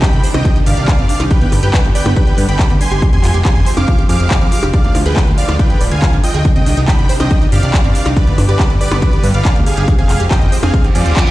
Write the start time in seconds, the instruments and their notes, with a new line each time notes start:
Already playing: supersaw synth C3 D#3 D4 G4
0.02 synth pluck G4, supersaw synth G5 B5, kick, clap, closed hi-hat
0.13 analog synth bass C2, closed hi-hat
0.24 synth pluck C5, open hi-hat
0.34 analog synth bass C2, synth pluck C4, supersaw synth D#5 G5, closed hi-hat, percussion blips
0.45 synth pluck D4, kick, closed hi-hat
0.56 synth pluck D#4, closed hi-hat
0.66 analog synth bass G1, synth pluck G4, supersaw synth D5 F5, open hi-hat
0.77 analog synth bass C2, closed hi-hat
0.88 synth pluck C5, kick, clap, closed hi-hat
0.98 analog synth bass G1, synth pluck C4, closed hi-hat
1.09 synth pluck D4, open hi-hat
1.20 analog synth bass C2, synth pluck D#4, closed hi-hat, percussion blips
1.31 supersaw synth D3 G3 B3 B4 G5, kick, closed hi-hat
1.41 analog synth bass G1, synth pluck B3, closed hi-hat
1.52 analog synth bass G1, synth pluck D4, open hi-hat, percussion blips
1.63 analog synth bass G1, synth pluck G4, supersaw synth B4 G5, closed hi-hat
1.74 synth pluck B4, kick, clap, closed hi-hat
1.84 analog synth bass G1, closed hi-hat
1.95 supersaw synth B4 G5, synth pluck D5, open hi-hat
2.06 analog synth bass G1, synth pluck B3, closed hi-hat, percussion blips
2.16 synth pluck D4, supersaw synth B4 G5, kick, closed hi-hat
2.27 synth pluck G4, closed hi-hat
2.38 analog synth bass G2, synth pluck B4, open hi-hat
2.48 analog synth bass G1, supersaw synth G5 B5, closed hi-hat
2.59 synth pluck D5, kick, clap, closed hi-hat
2.70 analog synth bass D2, synth pluck B3, closed hi-hat
2.81 synth pluck D4, supersaw synth G#5 C6, open hi-hat
2.92 analog synth bass G1, synth pluck G4, closed hi-hat
3.02 supersaw synth F3 G#3 C4, kick, closed hi-hat
3.13 analog synth bass F1, synth pluck C4, supersaw synth G#5 C6, closed hi-hat
3.24 analog synth bass F1, synth pluck F4, clap, open hi-hat
3.34 analog synth bass F1, synth pluck G4, closed hi-hat
3.45 synth pluck G#4, supersaw synth G#5 C6, kick, clap, closed hi-hat
3.56 analog synth bass F1, closed hi-hat
3.66 synth pluck C5, open hi-hat
3.77 analog synth bass F1, synth pluck C4, supersaw synth F5 D6, closed hi-hat, percussion blips
3.88 synth pluck F4, kick, closed hi-hat
3.99 synth pluck G4, closed hi-hat
4.09 analog synth bass F2, synth pluck G#4, supersaw synth F5 D6, open hi-hat
4.20 analog synth bass F1, closed hi-hat
4.31 synth pluck C5, kick, clap, closed hi-hat
4.41 analog synth bass F2, synth pluck C4, closed hi-hat
4.52 synth pluck F4, open hi-hat
4.63 analog synth bass F1, synth pluck G4, closed hi-hat, percussion blips
4.73 supersaw synth D3 F3 F4 D5 F5, kick, closed hi-hat
4.84 analog synth bass D2, synth pluck D4, closed hi-hat
4.95 analog synth bass D2, synth pluck F4, open hi-hat, percussion blips
5.06 analog synth bass D2, synth pluck G#4, supersaw synth B4 G5, closed hi-hat
5.16 synth pluck F4, kick, clap, closed hi-hat
5.27 analog synth bass D2, closed hi-hat
5.38 supersaw synth D5 F5, synth pluck F5, open hi-hat
5.49 analog synth bass D2, synth pluck D4, closed hi-hat, percussion blips
5.59 synth pluck F4, supersaw synth B4 G5, kick, closed hi-hat
5.70 synth pluck G#4, closed hi-hat
5.81 analog synth bass D1, synth pluck D5, open hi-hat
5.91 analog synth bass D2, supersaw synth F5 G#5, closed hi-hat
6.02 synth pluck F5, kick, clap, closed hi-hat
6.13 analog synth bass G#1, synth pluck D4, closed hi-hat
6.24 synth pluck F4, supersaw synth D#5 G5, open hi-hat
6.34 analog synth bass D2, synth pluck G#4, closed hi-hat
6.45 supersaw synth C3 D#3 D4 G4, kick, closed hi-hat
6.56 analog synth bass C2, synth pluck C4, supersaw synth D#5 G5, closed hi-hat
6.66 analog synth bass C2, synth pluck D4, open hi-hat
6.77 analog synth bass C2, synth pluck D#4, closed hi-hat
6.88 synth pluck D4, supersaw synth G5 B5, kick, clap, closed hi-hat
6.99 analog synth bass C2, closed hi-hat
7.09 synth pluck C5, open hi-hat
7.20 analog synth bass C2, synth pluck C4, supersaw synth D#5 G5, closed hi-hat, percussion blips
7.31 synth pluck D4, kick, closed hi-hat
7.41 synth pluck D#4, closed hi-hat
7.52 analog synth bass G1, synth pluck G4, supersaw synth D5 F5, open hi-hat
7.63 analog synth bass C2, closed hi-hat
7.74 synth pluck C5, kick, clap, closed hi-hat
7.84 analog synth bass G1, synth pluck C4, closed hi-hat
7.95 synth pluck D4, open hi-hat
8.06 analog synth bass C2, synth pluck D#4, closed hi-hat, percussion blips
8.17 supersaw synth D3 G3 B3 B4 D5, kick, closed hi-hat
8.27 analog synth bass G1, synth pluck B3, closed hi-hat
8.38 analog synth bass G1, synth pluck D4, open hi-hat, percussion blips
8.48 analog synth bass G1, synth pluck G4, supersaw synth B4 D5, closed hi-hat
8.59 synth pluck D4, kick, clap, closed hi-hat
8.70 analog synth bass G1, closed hi-hat
8.81 supersaw synth B4 D5, synth pluck D5, open hi-hat
8.91 analog synth bass G1, synth pluck B3, closed hi-hat, percussion blips
9.02 synth pluck D4, supersaw synth B4 D5, kick, closed hi-hat
9.13 synth pluck G4, closed hi-hat
9.24 analog synth bass G2, synth pluck B4, open hi-hat
9.34 analog synth bass G1, supersaw synth D5 F5, closed hi-hat
9.45 synth pluck D5, kick, clap, closed hi-hat
9.56 analog synth bass D2, synth pluck B3, closed hi-hat
9.66 synth pluck D4, supersaw synth G#4 F5, open hi-hat
9.77 analog synth bass G1, synth pluck G4, closed hi-hat
9.88 supersaw synth F3 G#3 C4, kick, closed hi-hat
9.98 analog synth bass F1, synth pluck C4, supersaw synth G#4 F5, closed hi-hat
10.09 analog synth bass F1, synth pluck F4, clap, open hi-hat
10.20 analog synth bass F1, synth pluck G4, closed hi-hat
10.31 synth pluck F4, supersaw synth D#5 G5, kick, clap, closed hi-hat
10.41 analog synth bass F1, closed hi-hat
10.52 synth pluck C5, open hi-hat
10.63 analog synth bass F1, synth pluck C4, supersaw synth G#4 F5, closed hi-hat, percussion blips
10.74 synth pluck F4, kick, closed hi-hat, reverse cymbal
10.84 synth pluck G4, closed hi-hat
10.95 analog synth bass F2, supersaw synth F4 D5, synth pluck G#4, open hi-hat
11.06 analog synth bass D#1, synth pluck C5, closed hi-hat
11.16 synth pluck C5, kick, clap, closed hi-hat
11.27 analog synth bass F1, synth pluck F4, closed hi-hat